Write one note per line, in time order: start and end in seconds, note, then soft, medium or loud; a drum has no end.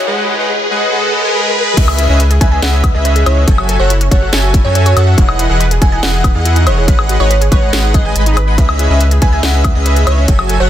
0.00 riser medium
0.07 0.36 G#3 loud
0.07 0.36 G#4 medium
0.07 0.36 B4 medium
0.07 0.36 D#5 medium
0.07 0.36 F#5 loud
0.39 0.51 G#3 medium
0.39 0.51 G#4 medium
0.39 0.51 B4 medium
0.39 0.51 D#5 medium
0.39 0.51 F#5 loud
0.71 0.90 G#3 medium
0.71 0.90 G#4 medium
0.71 0.90 B4 medium
0.71 0.90 D#5 medium
0.71 0.90 F#5 loud
0.92 1.21 G#3 medium
0.92 1.21 G#4 medium
0.92 1.21 B4 medium
0.92 1.21 D#5 medium
0.92 1.21 F#5 loud
1.24 1.33 G#3 medium
1.24 1.33 G#4 medium
1.24 1.33 B4 medium
1.24 1.33 D#5 medium
1.24 1.33 G#5 loud
1.34 1.75 G#3 medium
1.34 1.75 G#4 medium
1.34 1.75 B4 medium
1.34 1.75 D#5 medium
1.34 1.75 B5 medium
1.77 2.07 C#2 medium
1.77 2.07 C#4 loud
1.77 2.07 G#4 medium
1.77 2.07 B4 medium
1.77 1.83 B4 loud
1.77 2.07 D#5 medium
1.77 2.07 E5 loud
1.77 kick loud
1.77 closed hi-hat medium
1.77 crash loud
1.88 1.94 G#4 medium
1.88 high woodblock medium
1.99 2.05 E4 medium
1.99 closed hi-hat medium
2.09 2.39 C#2 loud
2.09 2.15 C#4 medium
2.09 2.21 C#4 medium
2.09 2.21 G#4 medium
2.09 2.21 B4 medium
2.09 2.21 D#5 medium
2.09 2.21 E5 loud
2.20 2.23 B4 medium
2.20 closed hi-hat medium
2.30 2.36 G#4 medium
2.30 closed hi-hat medium
2.41 2.60 C#2 medium
2.41 2.60 C#4 medium
2.41 2.60 G#4 medium
2.41 2.60 B4 medium
2.41 2.47 B4 loud
2.41 2.60 D#5 medium
2.41 2.60 E5 loud
2.41 2.48 G#5 medium
2.41 kick loud
2.41 closed hi-hat medium
2.52 2.58 G#4 medium
2.52 2.58 G#5 medium
2.62 2.92 C#2 medium
2.62 2.92 C#4 medium
2.62 2.68 E4 medium
2.62 2.92 G#4 medium
2.62 2.92 B4 medium
2.62 2.92 D#5 medium
2.62 2.92 E5 loud
2.62 3.05 F#5 medium
2.62 snare loud
2.62 closed hi-hat medium
2.73 2.79 C#4 medium
2.84 2.87 B4 medium
2.84 kick loud
2.84 closed hi-hat medium
2.84 high woodblock medium
2.94 3.24 C#2 loud
2.94 3.24 C#4 loud
2.94 3.24 G#4 medium
2.94 3.00 G#4 medium
2.94 3.24 B4 medium
2.94 3.24 D#5 medium
2.94 3.24 E5 loud
3.05 3.11 B4 loud
3.05 closed hi-hat medium
3.16 3.22 G#4 medium
3.16 closed hi-hat medium
3.26 3.45 C#2 medium
3.26 3.45 C#4 medium
3.26 3.32 E4 medium
3.26 3.45 G#4 medium
3.26 3.45 B4 medium
3.26 3.52 C#5 medium
3.26 3.45 D#5 medium
3.26 3.45 E5 medium
3.26 closed hi-hat medium
3.26 high woodblock medium
3.37 3.43 C#4 medium
3.47 3.77 F#1 loud
3.47 3.77 F#3 loud
3.47 3.77 F#4 medium
3.47 3.51 A4 medium
3.47 3.77 G#5 loud
3.47 kick loud
3.47 closed hi-hat medium
3.58 3.64 F#4 medium
3.58 high woodblock medium
3.69 3.75 A4 loud
3.69 closed hi-hat medium
3.79 4.09 F#1 medium
3.79 3.91 F#3 medium
3.79 3.85 F#4 medium
3.79 3.91 F#4 medium
3.79 3.91 A4 medium
3.79 3.93 C#5 medium
3.79 3.91 E5 medium
3.79 3.91 F#5 loud
3.90 3.96 E4 medium
3.90 closed hi-hat medium
4.01 4.07 C#4 medium
4.01 closed hi-hat medium
4.11 4.31 F#1 medium
4.11 4.30 F#3 medium
4.11 4.30 F#4 medium
4.11 4.30 A4 medium
4.11 4.15 A4 medium
4.11 4.62 C#5 medium
4.11 4.30 E5 medium
4.11 4.30 F#5 loud
4.11 kick loud
4.11 closed hi-hat medium
4.22 4.28 F#4 medium
4.33 4.63 F#1 medium
4.33 4.62 F#3 medium
4.33 4.62 F#4 medium
4.33 4.62 A4 medium
4.33 4.39 A4 loud
4.33 4.62 E5 medium
4.33 4.62 G#5 loud
4.33 snare loud
4.33 closed hi-hat medium
4.43 4.49 F#4 medium
4.54 4.60 E4 medium
4.54 kick loud
4.54 closed hi-hat medium
4.65 4.94 F#2 loud
4.65 4.94 F#3 medium
4.65 4.71 C#4 medium
4.65 4.94 F#4 medium
4.65 4.94 A4 medium
4.65 4.71 C#5 medium
4.65 4.94 E5 medium
4.65 4.94 G#5 loud
4.75 4.79 A4 medium
4.75 4.82 C#5 medium
4.75 closed hi-hat medium
4.86 4.92 F#4 medium
4.86 5.22 C#5 medium
4.86 closed hi-hat medium
4.96 5.16 F#2 loud
4.96 5.15 F#3 medium
4.96 5.15 F#4 medium
4.96 5.02 A4 loud
4.96 5.15 A4 medium
4.96 5.15 E5 medium
4.96 5.15 F#5 medium
4.96 closed hi-hat medium
4.96 high woodblock medium
5.07 5.13 F#4 medium
5.18 5.48 E1 medium
5.18 5.47 E3 loud
5.18 5.24 E4 medium
5.18 5.47 E4 medium
5.18 5.47 G#4 medium
5.18 5.47 D#5 medium
5.18 5.47 F#5 loud
5.18 kick loud
5.18 closed hi-hat medium
5.28 5.34 D#4 medium
5.28 high woodblock medium
5.39 5.43 B4 medium
5.39 closed hi-hat medium
5.50 5.79 E1 medium
5.50 5.62 E3 medium
5.50 5.62 E4 medium
5.50 5.56 G#4 medium
5.50 5.62 G#4 medium
5.50 5.62 D#5 medium
5.50 5.62 F#5 loud
5.60 5.66 B4 loud
5.60 closed hi-hat medium
5.71 5.77 G#4 medium
5.71 closed hi-hat medium
5.81 6.01 E1 loud
5.81 6.00 E3 medium
5.81 5.88 E4 medium
5.81 6.00 E4 medium
5.81 6.00 G#4 medium
5.81 6.00 D#5 medium
5.81 6.00 F#5 loud
5.81 5.88 G#5 medium
5.81 kick loud
5.81 closed hi-hat medium
5.92 5.98 D#4 medium
5.92 5.99 G#5 medium
6.03 6.33 E1 loud
6.03 6.32 E3 medium
6.03 6.32 E4 medium
6.03 6.32 G#4 medium
6.03 6.06 B4 medium
6.03 6.32 D#5 medium
6.03 6.32 F#5 loud
6.03 6.45 F#5 medium
6.03 6.32 F#5 medium
6.03 snare loud
6.03 closed hi-hat medium
6.13 6.19 G#4 medium
6.24 6.30 B4 loud
6.24 kick loud
6.24 closed hi-hat medium
6.24 high woodblock medium
6.35 6.68 E2 medium
6.35 6.64 E3 loud
6.35 6.64 E4 medium
6.35 6.41 G#4 medium
6.35 6.64 G#4 medium
6.35 6.64 D#5 medium
6.35 6.64 F#5 loud
6.45 6.51 E4 medium
6.45 closed hi-hat medium
6.56 6.62 D#4 medium
6.56 closed hi-hat medium
6.67 6.89 E1 medium
6.67 6.85 E3 medium
6.67 6.85 E4 medium
6.67 6.85 G#4 medium
6.67 6.70 B4 medium
6.67 6.92 C#5 medium
6.67 6.85 D#5 medium
6.67 6.85 F#5 medium
6.67 closed hi-hat medium
6.67 high woodblock medium
6.77 6.83 G#4 medium
6.88 7.18 G#1 medium
6.88 7.17 G#3 loud
6.88 7.17 G#4 medium
6.88 6.94 B4 loud
6.88 7.17 B4 loud
6.88 7.17 D#5 medium
6.88 7.17 F#5 loud
6.88 kick loud
6.88 closed hi-hat medium
6.99 7.05 G#4 medium
6.99 high woodblock medium
7.09 7.15 F#4 medium
7.09 closed hi-hat medium
7.20 7.50 G#1 medium
7.20 7.32 G#3 medium
7.20 7.26 D#4 medium
7.20 7.32 G#4 medium
7.20 7.32 B4 medium
7.20 7.50 C#5 medium
7.20 7.32 D#5 medium
7.20 7.32 F#5 loud
7.30 7.34 B4 medium
7.30 closed hi-hat medium
7.41 7.47 G#4 medium
7.41 closed hi-hat medium
7.52 7.71 G#1 medium
7.52 7.70 G#3 medium
7.52 7.70 G#4 medium
7.52 7.58 B4 loud
7.52 7.70 B4 medium
7.52 7.65 C#5 medium
7.52 7.70 D#5 medium
7.52 7.70 F#5 loud
7.52 7.70 F#5 medium
7.52 kick loud
7.52 closed hi-hat medium
7.62 7.68 G#4 medium
7.73 8.03 G#1 medium
7.73 8.02 G#3 medium
7.73 7.79 F#4 medium
7.73 8.02 G#4 medium
7.73 8.02 B4 medium
7.73 8.02 D#5 medium
7.73 8.02 F#5 loud
7.73 snare loud
7.73 closed hi-hat medium
7.84 7.90 D#4 medium
7.94 8.03 G#4 loud
7.94 8.26 D#5 loud
7.94 kick loud
7.94 closed hi-hat medium
8.05 8.13 G#1 loud
8.05 8.14 G#3 medium
8.05 8.14 G#4 medium
8.05 8.11 G#4 medium
8.05 8.14 B4 medium
8.05 8.14 D#5 medium
8.05 8.14 G#5 loud
8.15 8.60 G#1 loud
8.15 8.56 G#3 medium
8.15 8.56 G#4 medium
8.15 8.55 B4 medium
8.15 8.56 D#5 medium
8.15 8.25 G#5 medium
8.15 8.56 B5 medium
8.15 closed hi-hat medium
8.26 8.35 D#4 loud
8.26 closed hi-hat medium
8.37 8.41 B4 loud
8.37 closed hi-hat medium
8.37 high woodblock medium
8.48 8.51 F#5 medium
8.58 8.88 C#2 medium
8.58 8.88 C#4 loud
8.58 8.88 G#4 medium
8.58 8.88 B4 medium
8.58 8.64 B4 loud
8.58 8.88 D#5 medium
8.58 8.88 E5 loud
8.58 kick loud
8.58 closed hi-hat medium
8.69 8.75 G#4 medium
8.69 high woodblock medium
8.79 8.85 E4 medium
8.79 closed hi-hat medium
8.90 9.20 C#2 loud
8.90 9.02 C#4 medium
8.90 8.96 C#4 medium
8.90 9.02 G#4 medium
8.90 9.02 B4 medium
8.90 9.02 D#5 medium
8.90 9.02 E5 loud
9.01 9.04 B4 medium
9.01 closed hi-hat medium
9.11 9.17 G#4 medium
9.11 closed hi-hat medium
9.22 9.41 C#2 medium
9.22 9.41 C#4 medium
9.22 9.41 G#4 medium
9.22 9.41 B4 medium
9.22 9.28 B4 loud
9.22 9.41 D#5 medium
9.22 9.41 E5 loud
9.22 9.29 G#5 medium
9.22 kick loud
9.22 closed hi-hat medium
9.33 9.39 G#4 medium
9.33 9.39 G#5 medium
9.43 9.73 C#2 medium
9.43 9.73 C#4 medium
9.43 9.49 E4 medium
9.43 9.73 G#4 medium
9.43 9.73 B4 medium
9.43 9.73 D#5 medium
9.43 9.73 E5 medium
9.43 9.73 E5 loud
9.43 9.86 F#5 medium
9.43 snare loud
9.43 closed hi-hat medium
9.54 9.60 C#4 medium
9.64 9.68 B4 medium
9.64 kick loud
9.64 closed hi-hat medium
9.64 high woodblock medium
9.75 10.05 C#2 loud
9.75 10.04 C#4 loud
9.75 10.04 G#4 medium
9.75 9.81 G#4 medium
9.75 10.04 B4 medium
9.75 10.04 D#5 medium
9.75 10.04 E5 loud
9.86 9.92 B4 loud
9.86 closed hi-hat medium
9.96 10.02 G#4 medium
9.96 closed hi-hat medium
10.07 10.26 C#2 medium
10.07 10.26 C#4 medium
10.07 10.13 E4 medium
10.07 10.26 G#4 medium
10.07 10.26 B4 medium
10.07 10.33 C#5 medium
10.07 10.26 D#5 medium
10.07 10.26 E5 medium
10.07 closed hi-hat medium
10.07 high woodblock medium
10.18 10.24 C#4 medium
10.28 10.58 F#1 medium
10.28 10.58 F#3 loud
10.28 10.58 F#4 medium
10.28 10.32 A4 medium
10.28 10.58 A4 medium
10.28 10.58 E5 medium
10.28 10.58 G#5 loud
10.28 kick loud
10.28 closed hi-hat medium
10.39 10.45 F#4 medium
10.39 high woodblock medium
10.49 10.56 A4 loud
10.49 closed hi-hat medium
10.60 10.70 F#1 medium
10.60 10.70 F#3 medium
10.60 10.66 F#4 medium
10.60 10.70 F#4 medium
10.60 10.70 A4 medium
10.60 10.70 C#5 medium
10.60 10.70 E5 medium
10.60 10.70 F#5 loud